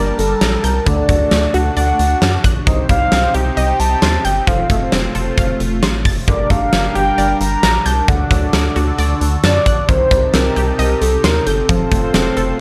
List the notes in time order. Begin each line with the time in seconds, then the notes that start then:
Already playing: G1 G3 A#3 D4 G4 A#4 D5 A5
0.19 G1 A4, closed hi-hat
0.41 A#1 A4 A#5, snare, closed hi-hat
0.64 C2 A#4 G6, closed hi-hat
0.86 D2 D3 A3 D4 F#4 A4 D5, kick, closed hi-hat
1.09 D2 F#3 A3 D4 F#4 A4, kick, closed hi-hat
1.20 A3 D4 F#4 A4
1.31 D2 A3, snare, closed hi-hat
1.54 D2 F#4 F#5, closed hi-hat
1.77 D2 D5 F#5, closed hi-hat
1.99 D2, closed hi-hat
2.22 F#2 A5, snare, closed hi-hat
2.44 A#1 F#6, kick, closed hi-hat
2.67 C2 C3 D#3 C4 D#4 G4 C5 D#5, kick, closed hi-hat
2.89 C2 G3 C4 D#4 G4 C5 F5, kick, closed hi-hat
3.01 C4 D#4 G4 C5
3.12 C2 C4, snare, closed hi-hat
3.34 C2 G4 G5, closed hi-hat
3.57 C2 D#5, closed hi-hat
3.79 C2 A5, closed hi-hat
4.02 D#2 C6, snare, closed hi-hat
4.25 G1 G5 G6, closed hi-hat
4.47 F1 F3 A3 C4 F4 A4 C5 F5, kick, closed hi-hat
4.70 F1 A3 C4 F4 A4 D#5, kick, closed hi-hat
4.81 C4 F4 A4 C5
4.92 F1 C4, snare, closed hi-hat
5.15 F1 A4, closed hi-hat
5.38 F1 F5, kick, closed hi-hat
5.60 F1, closed hi-hat
5.83 A1 C6, snare, closed hi-hat
6.05 F1 A6, kick, open hi-hat
6.28 G1 D3 G3 D4 G4 A#4 D5, kick, closed hi-hat
6.50 G1 A3 D4 G4 A#4 D5 F5, kick, closed hi-hat
6.62 D4 G4 A#4 F5
6.73 G1 A#3, snare, closed hi-hat
6.95 G1 G4 G5, closed hi-hat
7.18 G1 D5, closed hi-hat
7.41 G1 A#5, closed hi-hat
7.63 A#1 A#5, snare, closed hi-hat
7.86 C2 A5 G6, closed hi-hat
8.08 D2 D3 D4 F#4 A4 D5 F#5, kick, closed hi-hat
8.31 D2 F#3 D4 F#4 A4 D5, kick, closed hi-hat
8.42 D4 F#4 A4 D5
8.53 D2 A3, snare, closed hi-hat
8.76 D2 F#4, closed hi-hat
8.98 D2 D5, closed hi-hat
9.21 D2, closed hi-hat
9.44 F#2 D5 A5, snare, closed hi-hat
9.66 A#1 F#6, kick, closed hi-hat
9.89 C2 C3 D#3 C4 D#4 G4 C5, kick, closed hi-hat
10.11 C2 G3 C4 D#4 G4 A#4, kick, closed hi-hat
10.23 C4 D#4 G4 A5
10.34 C2 C4 A#4, snare, closed hi-hat
10.56 C2 G4, closed hi-hat
10.79 C2 A#4 D#5, closed hi-hat
11.01 C2 A4, closed hi-hat
11.24 D#2 A#4 C6, snare, closed hi-hat
11.47 G1 A4 G6, closed hi-hat
11.69 F1 F3 A3 C4 F4 A4 C5, kick, closed hi-hat
11.92 F1 A3 C4 F4 A4 C5, kick, closed hi-hat
12.03 C4 F4 A4 C5
12.14 F1 C4, snare, closed hi-hat
12.37 F1 A4, closed hi-hat